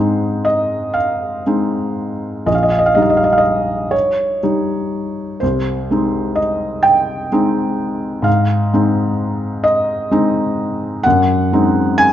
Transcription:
felt piano
Already playing: G#2 G#3 C4 D#4 C5
0.45 D#5
0.94 F5
1.46 G#3 C4 D#4
2.46 A#1 D#5
2.55 F5
2.63 D#5
2.71 F5
2.79 D#5
2.86 F5
2.95 G3 D#4 D#5
3.02 F5
3.10 D#5
3.17 F5
3.24 D#5
3.33 F5
3.38 D#5
3.91 C#5
4.43 G3 D#4
5.40 C2 C5
5.91 G#3 C4 D#4
6.36 D#5
6.83 G5
7.32 G#3 C4 D#4
8.22 G#2 F5
8.73 G#3 C4 D#4
9.64 D#5
10.11 G#3 C4 D#4
11.03 F#2 F#5
11.53 G#3 C4 D#4
11.98 G#5

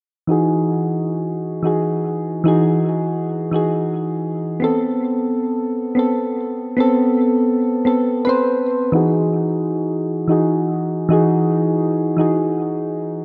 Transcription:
synth keys
0.27 E3 D#4 F#4
0.31 G#4
1.63 E3 D#4 F#4
1.67 G#4
2.44 E3 D#4 F#4 G#4
3.51 E3 D#4 F#4
3.56 G#4
4.60 B3 C4
4.64 A4
5.95 B3 C4
5.99 A4
6.77 B3 C4 A4
7.85 B3 C4 A4
8.25 C4 B4
8.29 C5
8.92 E3 D#4 F#4 G#4
10.28 E3 D#4 F#4
10.32 G#4
11.09 E3 D#4 F#4
11.13 G#4
12.17 E3 D#4 F#4
12.21 G#4

